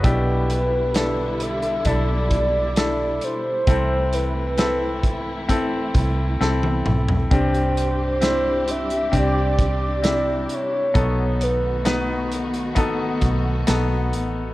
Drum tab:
HH |x-x-x-xxx-x-x-x-|x-x-x-x-x-x-----|xxx-x-xxx-x-x-x-|x-x-x-xxx-x-x-x-|
SD |----o-------o---|----o-------o---|----o-------o---|----o-------o---|
T1 |----------------|-------------o--|----------------|----------------|
T2 |----------------|--------------o-|----------------|----------------|
FT |----------------|---------------o|----------------|----------------|
BD |o-------o-o-----|o-----o-o-o-----|o-------o-o-----|o-------o-o-----|